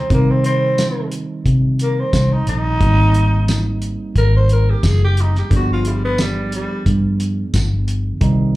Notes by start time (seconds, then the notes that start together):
Already playing: C4
0.10 C3 D#3 G3 A#3 C4 D#4, kick, closed hi-hat
0.31 C4
0.44 C4, closed hi-hat
0.78 snare, closed hi-hat, tambourine
1.12 closed hi-hat
1.46 C3, kick, closed hi-hat
1.79 A#3, closed hi-hat
1.99 C4
2.13 C2, kick, snare, closed hi-hat, tambourine
2.32 D#4
2.47 A#1 D#4, closed hi-hat
2.80 G#1 G3 A#3 C4 D#4, kick, closed hi-hat
3.14 closed hi-hat
3.48 snare, closed hi-hat, tambourine
3.82 closed hi-hat
4.16 G#1 A#4, kick, closed hi-hat
4.36 C5
4.49 A#4, closed hi-hat
4.70 G4
4.83 F#1 G#4, kick, snare, closed hi-hat, tambourine
5.05 G4
5.17 closed hi-hat
5.21 D#4
5.35 G4, snare
5.50 G1 F3 B3 D4 G#4, kick, closed hi-hat
5.56 F#4
5.73 F4
5.85 G3, closed hi-hat
6.05 B3
6.18 G3, snare, closed hi-hat, tambourine
6.52 G3, closed hi-hat
6.86 G2, kick, closed hi-hat
7.20 closed hi-hat
7.54 G1, kick, snare, closed hi-hat, tambourine
7.88 closed hi-hat
8.21 C2 D#3 G3 C4 D#4, kick, closed hi-hat